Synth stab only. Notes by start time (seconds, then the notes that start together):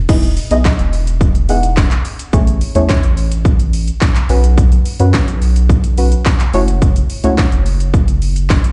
0.09 B3 D#4 E4 G#4 D#5
0.51 B3 D#4 E4 G#4 D#5
1.49 B3 D#4 E4 G#4 F#5
2.33 A3 C#4 E4 G#4 C#5
2.75 A3 C#4 E4 G#4 C#5
4.29 C#4 F#4 B4
5.00 C#4 F#4 B4
5.98 C#4 F#4 B4
6.54 A3 C#4 E4 F#4 C#5
7.24 A3 C#4 E4 F#4 C#5